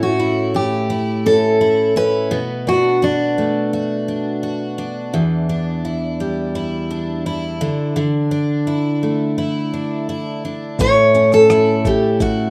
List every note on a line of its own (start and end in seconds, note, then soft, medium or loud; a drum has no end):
0.00 2.31 A2 medium
0.00 0.54 A3 medium
0.00 1.25 C#4 soft
0.00 0.19 E4 medium
0.00 0.51 F#4 medium
0.20 0.89 E4 medium
0.54 3.38 A3 soft
0.54 1.26 G4 medium
0.90 1.60 E4 medium
1.26 1.95 C#4 soft
1.26 1.97 A4 medium
1.61 2.38 E4 medium
1.96 2.38 C#4 medium
1.96 2.68 B4 loud
2.31 5.14 B2 medium
2.67 4.08 D4 soft
2.67 3.04 F#4 medium
3.02 4.75 D4 medium
3.02 3.72 F#4 medium
3.38 5.21 A3 soft
3.73 4.42 F#4 medium
4.08 4.78 D4 soft
4.43 5.21 F#4 medium
4.78 5.49 D4 medium
5.14 7.68 E2 medium
5.49 6.90 D4 soft
5.85 6.55 E4 medium
6.20 7.68 G3 soft
6.55 7.26 E4 medium
6.91 8.31 D4 medium
7.26 7.99 E4 medium
7.61 7.95 D3 medium
7.96 10.79 D3 medium
8.31 9.72 D4 medium
8.67 9.38 E4 medium
9.03 11.85 A3 soft
9.38 10.09 E4 medium
9.74 10.44 D4 soft
10.09 11.50 E4 medium
10.45 10.87 D4 medium
10.79 12.50 A2 medium
10.79 11.33 C#5 medium
10.79 kick medium
10.79 shaker medium
11.14 12.50 C#4 medium
11.14 shaker soft
11.32 11.87 A4 medium
11.32 cross-stick soft
11.32 shaker soft
11.50 12.19 E4 medium
11.50 cross-stick medium
11.50 shaker medium
11.85 12.50 A3 soft
11.85 12.22 G4 medium
11.85 kick medium
11.85 shaker soft
12.20 12.50 E4 medium
12.20 12.50 F#4 medium
12.20 kick medium
12.20 shaker medium